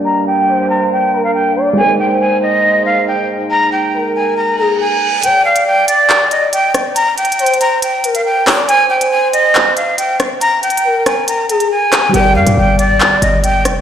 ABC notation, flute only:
X:1
M:4/4
L:1/16
Q:1/4=139
K:Gphr
V:1 name="Flute"
b2 g4 b2 g3 f g2 z2 | a2 g2 a2 e4 f2 g2 z2 | b2 g4 a2 b2 b2 a4 | g2 f2 g2 d4 e2 g2 z2 |
b2 g4 b2 g3 f g2 z2 | a2 g2 a2 e4 f2 g2 z2 | b2 g4 a2 b2 b2 a4 | g2 f2 g2 d4 e2 g2 z2 |]